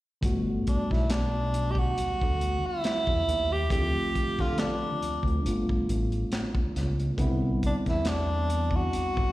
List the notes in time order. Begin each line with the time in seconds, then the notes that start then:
0.21 G1 D3 G3 A3 B3, kick, closed hi-hat
0.25 F#4
0.67 D4, kick, closed hi-hat
0.91 B1 E4, kick, snare
1.10 D4, snare, clap, closed hi-hat
1.54 closed hi-hat
1.71 G4
1.75 F#4, kick
1.98 D2, closed hi-hat
2.21 D2, kick
2.41 closed hi-hat
2.66 E4
2.84 snare, clap, closed hi-hat
3.07 E2, kick
3.28 D#2, closed hi-hat
3.52 G4
3.69 D2 D3 F3 A3 C4 G4, kick, closed hi-hat
3.74 E4
3.80 F4
4.15 D3, kick, closed hi-hat
4.39 D3 F4, kick, snare, closed hi-hat
4.58 D4, snare, clap, closed hi-hat
5.03 D2, closed hi-hat
5.23 D2, kick
5.27 closed hi-hat
5.43 G1 G3 A3 B3 D4, closed hi-hat
5.47 F4
5.69 A1, kick
5.89 A1, closed hi-hat
6.12 closed hi-hat
6.32 snare, clap, closed hi-hat
6.55 kick
6.76 C#2, snare, closed hi-hat
7.00 closed hi-hat
7.17 C2 D3 G3 B3 C4, kick, closed hi-hat
7.21 E4
7.63 D4, kick, closed hi-hat
7.86 E2 E4, kick, snare, closed hi-hat
8.05 D4, snare, clap, closed hi-hat
8.50 closed hi-hat
8.71 kick
8.76 F#4
8.93 G1, closed hi-hat
9.17 G1, kick